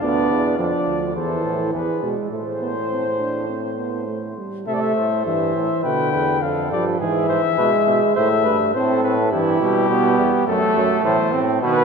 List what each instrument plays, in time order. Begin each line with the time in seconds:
0.01 bass trombone D2, trombone B3, flugelhorn D4, cornet D5
0.30 bass trombone E2
0.58 bass trombone F2, trombone F3, flugelhorn D4, cornet D5
0.88 bass trombone D2
1.15 bass trombone E2, trombone E3, flugelhorn A4, cornet C5
1.45 bass trombone A2
1.73 bass trombone E2, flugelhorn G#4, cornet B4
2.03 bass trombone B2, trombone G#3
2.31 bass trombone A2, trombone A3, cornet C5, flugelhorn C5
2.61 trombone B3
2.91 trombone C4
3.19 trombone D4
3.49 trombone C4
3.78 trombone B3
4.08 trombone A3
4.37 trombone G3
4.67 bass trombone C3, trombone A3, flugelhorn A4, cornet E5
4.74 cornet D5
4.81 cornet E5
4.95 bass trombone A2, flugelhorn C5
5.25 bass trombone G2, trombone E3, cornet E5
5.56 bass trombone A2
5.83 bass trombone B2, trombone D3, flugelhorn B4, cornet G5
6.12 bass trombone E2, flugelhorn B4
6.41 bass trombone F2, flugelhorn A4, cornet F5
6.72 bass trombone G2, trombone F3, cornet D5
7.00 bass trombone G#2, trombone E3, flugelhorn G#4, cornet E5
7.29 bass trombone G#2, flugelhorn C5
7.57 bass trombone B2, trombone G#3, flugelhorn B4
7.86 bass trombone B2, flugelhorn E5
8.15 bass trombone A2, trombone A3, flugelhorn C5, cornet E5
8.44 bass trombone G2, flugelhorn B4
8.72 bass trombone A2, trombone C4, flugelhorn A4, cornet C5
9.03 bass trombone A2, cornet B4
9.32 bass trombone G2, trombone E3, flugelhorn E4, cornet G4
9.60 bass trombone B2, trombone G3
9.89 bass trombone B2, flugelhorn B3
10.18 bass trombone E2
10.47 bass trombone F#2, trombone F#3, flugelhorn A3, cornet A4
10.76 bass trombone F#2, trombone F#3
11.04 bass trombone A2, trombone E3, cornet C5
11.32 bass trombone A2, flugelhorn C4
11.62 bass trombone B2, trombone D#3, flugelhorn B3, cornet B4